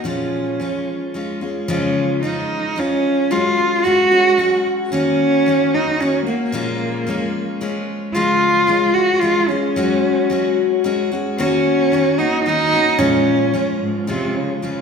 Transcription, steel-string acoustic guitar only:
0.04 0.59 A#2 medium
0.04 0.58 F3 medium
0.04 0.60 G#3 medium
0.04 0.60 C#4 medium
0.04 0.61 F4 medium
0.60 1.13 F3 soft
0.60 1.14 G#3 soft
0.60 1.15 C#4 soft
0.60 1.15 F4 medium
1.14 1.42 F3 soft
1.14 1.42 G#3 soft
1.14 1.41 C#4 medium
1.14 1.40 F4 medium
1.41 1.68 G#3 soft
1.41 1.69 C#4 soft
1.41 1.69 F4 soft
1.68 2.23 C#3 medium
1.68 2.21 F3 medium
1.68 2.23 G#3 medium
1.68 2.24 C#4 medium
1.68 2.24 F4 medium
2.23 2.75 F3 medium
2.23 2.76 G#3 medium
2.23 2.77 C#4 medium
2.23 2.77 F4 medium
2.76 3.30 F3 medium
2.76 3.30 G#3 medium
2.76 3.32 C#4 medium
2.76 3.31 F4 medium
3.31 3.84 F#3 medium
3.31 3.84 G#3 medium
3.31 3.85 C#4 medium
3.84 4.11 F#3 medium
3.84 4.12 G#3 medium
3.84 4.12 C#4 medium
3.84 4.10 F#4 medium
4.11 4.38 G#3 soft
4.11 4.38 C#4 soft
4.11 4.38 F#4 medium
4.38 4.91 F#3 medium
4.38 4.92 G#3 medium
4.38 4.93 C#4 medium
4.38 4.93 F#4 medium
4.92 5.45 D#3 medium
4.92 5.47 A#3 medium
4.92 5.48 C#4 medium
4.92 5.47 F#4 medium
5.46 5.99 D#3 medium
5.46 6.00 A#3 medium
5.46 6.02 C#4 medium
5.46 6.01 F#4 medium
6.00 6.27 D#3 medium
6.00 6.27 A#3 medium
6.00 6.27 C#4 medium
6.00 6.25 F#4 medium
6.27 6.53 A#3 soft
6.27 6.53 C#4 soft
6.27 6.53 F#4 medium
6.52 7.07 A#2 medium
6.52 7.06 F3 medium
6.52 7.07 G#3 medium
6.52 7.08 C#4 medium
6.52 7.10 F4 medium
7.07 7.60 F3 medium
7.07 7.61 G#3 medium
7.07 7.62 C#4 medium
7.07 7.62 F4 medium
7.61 8.14 F3 medium
7.61 8.15 G#3 medium
7.61 8.16 C#4 medium
7.61 8.15 F4 medium
8.14 8.68 C#3 medium
8.14 8.66 F3 medium
8.14 8.68 G#3 medium
8.14 8.69 C#4 medium
8.14 8.69 F4 medium
8.67 9.20 F3 soft
8.67 9.21 G#3 medium
8.67 9.23 C#4 medium
8.67 9.23 F4 medium
9.21 9.49 F3 medium
9.21 9.49 G#3 medium
9.21 9.49 C#4 medium
9.21 9.47 F4 medium
9.49 9.76 G#3 soft
9.49 9.76 C#4 soft
9.49 9.76 F4 medium
9.76 10.29 F#3 medium
9.76 10.30 G#3 medium
9.76 10.31 C#4 medium
9.76 10.32 F#4 loud
10.30 10.83 F#3 medium
10.30 10.83 G#3 medium
10.30 10.85 C#4 medium
10.30 10.85 F#4 medium
10.84 11.11 F#3 medium
10.84 11.11 G#3 medium
10.84 11.12 C#4 medium
10.84 11.10 F#4 medium
11.12 11.39 G#3 soft
11.12 11.38 C#4 soft
11.12 11.38 F#4 medium
11.38 11.91 D#3 medium
11.38 11.93 A#3 medium
11.38 11.93 C#4 medium
11.38 11.93 F#4 loud
11.92 12.19 D#3 medium
11.92 12.20 A#3 medium
11.92 12.19 C#4 medium
11.92 12.18 F#4 medium
12.19 12.46 A#3 soft
12.19 12.47 C#4 medium
12.19 12.46 F#4 soft
12.46 12.73 D#3 medium
12.46 12.74 A#3 medium
12.46 12.74 C#4 medium
12.46 12.72 F#4 medium
12.73 12.99 A#3 soft
12.73 12.98 C#4 soft
12.73 13.00 F#4 soft
12.99 13.54 A#2 medium
12.99 13.52 F3 medium
12.99 13.53 G#3 medium
12.99 13.54 C#4 medium
12.99 13.55 F4 medium
13.54 14.06 F3 medium
13.54 14.07 G#3 medium
13.54 14.08 C#4 medium
13.54 14.09 F4 medium
14.07 14.62 F3 medium
14.07 14.62 G#3 medium
14.07 14.63 C#4 medium
14.07 14.63 F4 medium
14.62 14.81 C#3 soft
14.62 14.81 F3 soft
14.62 14.81 G#3 medium
14.62 14.81 C#4 medium
14.62 14.81 F4 medium

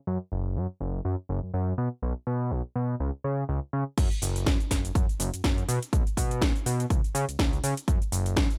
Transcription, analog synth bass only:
0.07 0.18 F#2 loud
0.32 0.58 F#1 loud
0.56 0.67 F#2 loud
0.80 1.00 F#1 medium
1.05 1.16 F#2 medium
1.29 1.40 F#1 loud
1.43 1.52 F#2 soft
1.54 1.73 F#2 loud
1.78 1.89 B2 loud
2.02 2.13 B1 loud
2.27 2.52 B2 medium
2.51 2.62 B1 loud
2.76 2.95 B2 medium
3.00 3.11 C#2 medium
3.24 3.44 C#3 medium
3.49 3.60 C#2 medium
3.73 3.84 C#3 medium
3.98 4.08 F#2 loud
4.22 4.48 F#1 medium
4.46 4.57 F#2 loud
4.71 4.90 F#1 medium
4.95 5.06 F#2 medium
5.20 5.30 F#1 loud
5.44 5.64 F#2 loud
5.68 5.79 B2 loud
5.93 6.03 B1 loud
6.17 6.43 B2 loud
6.42 6.52 B1 loud
6.66 6.86 B2 medium
6.90 7.01 C#2 medium
7.15 7.25 C#3 loud
7.29 7.37 C#2 soft
7.39 7.59 C#2 loud
7.64 7.74 C#3 loud
7.88 7.99 F#2 loud
8.12 8.38 F#1 loud
8.37 8.47 F#2 loud

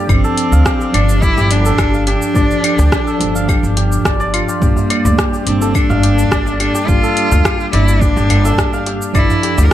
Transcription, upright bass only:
0.09 0.19 G1 loud
0.52 0.61 D2 loud
0.94 1.29 G1 medium
1.37 1.72 G1 loud
1.79 2.14 G1 medium
2.36 2.46 G1 loud
2.79 2.88 D2 loud
3.20 3.55 G1 medium
3.63 3.98 G1 loud
4.05 4.40 G1 medium
4.62 4.72 G1 loud
5.05 5.14 D2 loud
5.47 5.82 G1 medium
5.90 6.24 G1 loud
6.32 6.67 G1 medium
6.88 6.98 G1 medium
7.31 7.40 D2 loud
7.73 8.08 G1 loud
8.17 8.51 G1 loud
8.58 8.93 G1 medium
9.15 9.25 G1 loud
9.58 9.67 D2 loud

